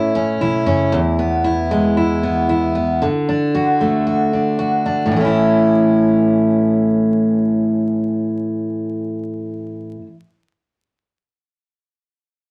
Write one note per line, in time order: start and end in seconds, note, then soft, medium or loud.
0.00 0.37 A1 medium
0.00 0.98 A3 medium
0.00 0.14 C#4 medium
0.00 0.41 E4 medium
0.15 0.65 C#4 medium
0.41 0.65 B1 medium
0.41 1.44 E4 medium
0.66 0.90 F#1 medium
0.66 0.99 C#4 medium
0.92 3.02 E2 medium
1.19 2.22 B3 soft
1.44 1.96 E4 medium
1.71 3.08 G#3 soft
1.97 2.48 E4 medium
2.23 2.74 B3 soft
2.49 3.08 E4 medium
2.75 3.07 B3 soft
3.02 5.11 D3 medium
3.29 4.32 D4 medium
3.55 4.06 F#4 medium
3.81 5.16 A3 soft
4.07 4.58 F#4 medium
4.33 4.84 D4 soft
4.59 5.17 F#4 medium
4.86 5.17 D4 soft
5.06 9.95 A2 medium
5.12 10.01 E3 medium
5.16 10.06 A3 medium
5.21 10.10 C#4 medium
5.21 10.14 E4 medium